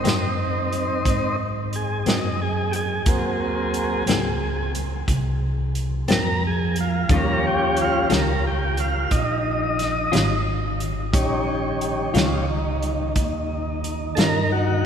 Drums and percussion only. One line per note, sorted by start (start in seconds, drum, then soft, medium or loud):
0.05 snare medium
0.05 closed hi-hat medium
0.73 closed hi-hat soft
1.05 kick medium
1.05 closed hi-hat medium
1.73 closed hi-hat medium
2.06 snare medium
2.06 closed hi-hat medium
2.73 closed hi-hat medium
3.06 kick medium
3.06 closed hi-hat medium
3.74 closed hi-hat medium
4.07 snare medium
4.07 closed hi-hat medium
4.75 closed hi-hat medium
5.08 kick medium
5.08 closed hi-hat medium
5.75 closed hi-hat medium
6.08 snare loud
6.08 closed hi-hat medium
6.76 closed hi-hat medium
7.09 kick medium
7.09 closed hi-hat medium
7.77 closed hi-hat medium
8.10 snare medium
8.10 closed hi-hat medium
8.77 closed hi-hat medium
9.11 kick medium
9.11 closed hi-hat medium
9.79 snare soft
9.79 closed hi-hat medium
10.13 snare loud
10.13 closed hi-hat medium
10.80 closed hi-hat medium
11.14 kick medium
11.14 closed hi-hat medium
11.81 closed hi-hat medium
12.15 snare medium
12.15 closed hi-hat medium
12.82 closed hi-hat soft
13.16 kick medium
13.16 closed hi-hat medium
13.84 closed hi-hat medium
14.17 snare loud
14.17 closed hi-hat medium